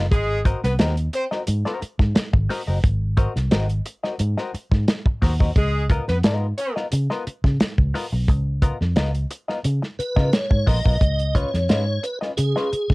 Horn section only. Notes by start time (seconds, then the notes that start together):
0.12 G#3 G#4
0.64 B3 B4
1.14 C4 C5
5.55 G#3 G#4
6.08 B3 B4
6.57 C#4 C#5